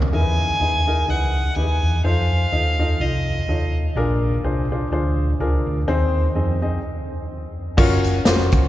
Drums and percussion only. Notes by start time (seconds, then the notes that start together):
0.02 floor tom
7.78 kick, crash
8.04 closed hi-hat
8.25 snare, closed hi-hat
8.39 snare
8.52 kick, closed hi-hat